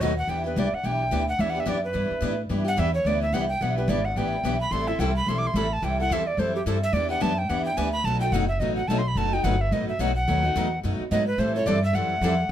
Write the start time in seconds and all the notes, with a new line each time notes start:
Already playing: F#4
0.00 D#2 B2 F#3 A3 D#4 F#4 B4 D#5
0.18 F#5
0.27 E2 E3 G3 B3 D4 E4 G4 B4 G5
0.44 B3 D4 G4 B4
0.56 C2 E3 G3 B3 D4 E4 G4 B4 D5
0.72 F#5, muted upright bass stroke
0.83 B1 E3 G3 B3 D4 E4 G4 B4 G5
1.11 D2 E3 G3 B3 D4 E4 G4 B4
1.29 F#5
1.39 E2 E3 G3 B3 D4 E4 G4 B4 E5
1.50 F#5
1.55 B3 D4 G4
1.60 E5
1.66 F#2 E3 G3 B3 D4 E4 G4 B4 D5
1.84 B4
1.93 G2 E3 G3 B3 D4 E4 G4 B4
2.11 muted upright bass stroke
2.21 A2 E3 G3 B3 D4 E4 G4 B4
2.49 G2 E3 G3 B3 D4 E4 G4 B4
2.65 B3 D4 G4 F#5
2.76 E2 E3 G3 B3 D4 E4 G4 B4 E5
2.94 C#5
3.05 D2 E3 G3 B3 D4 E4 G4 B4 D5
3.22 E5
3.32 C2 E3 G3 B3 D4 E4 G4 B4 F#5
3.49 G5
3.61 B1 E3 G3 B3 D4 E4 G4 B4 F#5
3.78 B3 D4 G4 B4
3.88 G#1 E3 G3 B3 D4 E4 G4 B4 D5
4.05 F#5
4.16 A1 E3 G3 B3 D4 E4 G4 B4 G5
4.43 B1 E3 G3 B3 D4 E4 G4 B4
4.61 B5
4.71 A1 E3 G3 C4 E4 A4 C6
4.88 C4 E4 A4 E5
4.99 C2 E3 G3 C4 E4 A4 G5
5.16 B5
5.26 B1 E3 G3 C4 E4 A4 C6
5.38 D6
5.47 C6
5.54 A1 E3 G3 C4 E4 A4 B5
5.73 A5
5.83 C2 E3 G3 C4 E4 A4 G5
6.00 C4 E4 A4 F#5
6.10 E2 E3 G3 C4 E4 A4 E5
6.27 D5
6.37 F#2 E3 G3 C4 E4 A4 C5
6.55 G4
6.66 G2 E3 G3 C4 E4 A4
6.83 E5
6.93 E2 E3 G3 B3 D4 E4 G4 B4 D5
7.09 B3 D4 G4 F#5
7.20 F#2 E3 G3 B3 D4 E4 G4 B4 A5
7.38 G5
7.49 E2 E3 G3 B3 D4 E4 G4 B4 F#5
7.65 G5
7.77 D2 E3 G3 B3 D4 E4 G4 B4 G#5
7.92 B5
8.04 B1 B2 F#3 A3 D#4 F#4 B4 A5
8.21 A3 D#4 F#4 G5
8.32 F#1 B2 F#3 A3 D#4 F#4 B4 F#5
8.48 E5
8.60 A1 B2 F#3 A3 D#4 F#4 B4 D#5
8.76 F#5
8.88 B1 B2 F#3 A3 D#4 F#4 B4 A5
8.98 C6
9.08 B5
9.15 F#1 B2 F#3 A3 D#4 F#4 B4 A5
9.33 A3 D#4 F#4 G5
9.44 G1 B2 F#3 A3 D#4 F#4 B4 F#5
9.61 E5
9.71 A1 B2 F#3 A3 D#4 F#4 B4 D#5
9.89 E5
9.99 B1 B2 F#3 A3 D#4 F#4 B4 F#5
10.16 F#5
10.27 D#2 B2 F#3 A3 D#4 F#4 B4
10.43 A3 D#4 F#4
10.56 E2 B2 F#3 A3 D#4 F#4 B4
10.83 F#2 B2 F#3 A3 D#4 F#4 B4
11.00 muted upright bass stroke
11.11 G#2 B2 F#3 A3 D#4 F#4 B4 D#5
11.27 B4
11.38 A2 E3 G3 C4 E4 A4 C5
11.56 C4 E4 A4 C#5
11.66 G2 E3 G3 C4 E4 A4 D5
11.84 E5
11.93 F#2 E3 G3 C4 E4 A4 F#5
12.21 F2 E3 G3 C4 E4 A4